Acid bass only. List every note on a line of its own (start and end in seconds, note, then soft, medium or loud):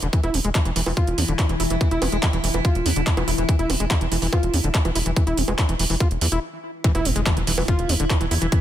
0.03 0.08 D3 medium
0.13 0.21 E3 medium
0.23 0.35 E4 loud
0.34 0.39 B3 medium
0.45 0.50 G#3 medium
0.55 0.60 F3 medium
0.65 0.71 E3 medium
0.76 0.81 E3 medium
0.86 0.92 E3 medium
0.97 1.19 F4 medium
1.18 1.23 B3 medium
1.28 1.34 D3 medium
1.49 1.55 E3 medium
1.60 1.63 E4 medium
1.70 1.75 E3 medium
1.81 1.89 E3 medium
1.91 2.03 E4 loud
2.02 2.07 B3 medium
2.12 2.17 G#3 medium
2.23 2.28 F3 medium
2.33 2.38 E3 medium
2.44 2.49 E3 medium
2.54 2.59 E3 medium
2.65 2.87 F4 medium
2.86 2.91 B3 medium
2.96 3.01 D3 medium
3.17 3.22 E3 medium
3.28 3.31 E4 medium
3.38 3.43 E3 medium
3.49 3.56 E3 medium
3.59 3.71 E4 loud
3.70 3.75 B3 medium
3.80 3.85 G#3 medium
3.91 3.96 F3 medium
4.01 4.06 E3 medium
4.12 4.17 E3 medium
4.22 4.27 E3 medium
4.33 4.55 F4 medium
4.54 4.59 B3 medium
4.64 4.69 D3 medium
4.85 4.90 E3 medium
4.95 4.99 E4 medium
5.06 5.11 E3 medium
5.16 5.24 E3 medium
5.27 5.39 E4 loud
5.37 5.43 B3 medium
5.48 5.53 G#3 medium
5.58 5.64 F3 medium
5.69 5.74 E3 medium
5.79 5.85 E3 medium
5.90 5.95 E3 medium
6.00 6.08 F4 medium
6.21 6.27 E3 medium
6.32 6.40 E4 medium
6.84 6.92 E3 medium
6.95 7.07 E4 loud
7.05 7.10 B3 medium
7.16 7.21 G#3 medium
7.26 7.31 F3 medium
7.37 7.42 E3 medium
7.47 7.52 E3 medium
7.58 7.63 E3 medium
7.68 7.91 F4 medium
7.89 7.94 B3 medium
8.00 8.05 D3 medium
8.21 8.26 E3 medium
8.31 8.34 E4 medium
8.42 8.47 E3 medium
8.52 8.60 E3 medium